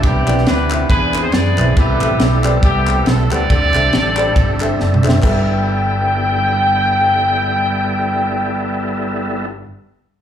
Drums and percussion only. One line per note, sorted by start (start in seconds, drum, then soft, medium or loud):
0.03 kick loud
0.03 ride bell medium
0.27 clap loud
0.27 ride bell medium
0.38 snare soft
0.46 snare loud
0.46 ride bell medium
0.70 clap loud
0.70 ride bell medium
0.90 kick loud
0.90 ride bell medium
1.14 clap loud
1.14 ride bell medium
1.32 snare loud
1.32 ride bell medium
1.58 clap medium
1.58 ride bell medium
1.77 kick loud
1.77 ride bell medium
2.01 clap loud
2.01 ride bell medium
2.19 snare loud
2.19 ride bell medium
2.44 clap loud
2.44 ride bell medium
2.63 kick loud
2.63 ride bell medium
2.87 clap loud
2.87 ride bell medium
3.06 snare loud
3.06 ride bell medium
3.31 clap loud
3.31 ride bell medium
3.50 kick loud
3.50 ride bell medium
3.74 snare soft
3.74 clap loud
3.74 ride bell medium
3.93 snare loud
3.93 ride bell medium
4.17 clap loud
4.17 ride bell medium
4.36 kick loud
4.36 ride bell medium
4.60 clap loud
4.60 ride bell medium
4.80 snare medium
4.94 mid tom medium
5.04 clap medium
5.09 snare loud
5.22 kick loud
5.22 clap medium
5.22 crash loud